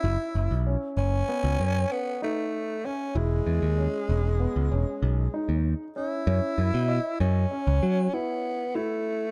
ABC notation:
X:1
M:5/4
L:1/16
Q:1/4=96
K:F#dor
V:1 name="Grand piano"
E4 C4 B,2 C4 D4 C2 | E4 C4 B,2 C4 D4 C2 | C2 E2 d4 C4 E4 E4 |]
V:2 name="Tenor saxophone"
E4 z2 C6 B,2 A,4 C2 | G,16 z2 E2- | E6 C6 B,4 A,4 |]
V:3 name="Picked electric bass" clef=bass
F,,, z F,,, B,,,2 z F,,,2 z C,, F,,2 z8 | E,,,2 E,, D,,2 z E,,,3 C,, E,,, z B,,,2 z D,,2 z3 | F,, z F,, B,,2 z F,,2 z C,, F,2 z8 |]